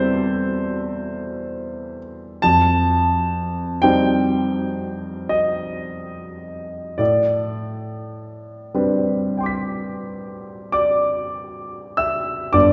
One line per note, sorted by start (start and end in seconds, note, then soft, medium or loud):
0.00 2.44 E2 soft
0.00 2.39 G3 soft
0.00 2.40 C4 soft
0.00 2.40 E4 soft
0.00 2.40 A4 soft
0.00 1.98 C5 medium
0.00 2.45 D5 medium
0.00 2.44 E5 medium
2.42 3.79 F2 soft
2.42 3.82 A5 medium
3.82 6.96 G3 soft
3.82 6.96 C4 soft
3.82 6.96 D#4 soft
3.82 6.96 C5 soft
3.82 5.30 G5 medium
5.29 6.99 D#5 medium
6.98 8.70 A2 soft
6.98 10.72 D5 medium
8.74 12.51 G3 soft
8.74 12.51 C4 soft
8.74 12.51 D4 soft
8.74 12.51 B4 soft
9.37 12.51 G5 soft
9.37 12.52 C6 soft
9.43 10.71 D6 soft
9.43 12.55 B6 soft
10.72 11.94 D5 soft
10.72 11.98 D6 medium
11.97 12.50 E5 soft
11.97 12.54 E6 medium
12.53 12.73 G1 soft
12.53 12.73 G2 soft
12.53 12.73 D5 medium
12.53 12.73 D6 medium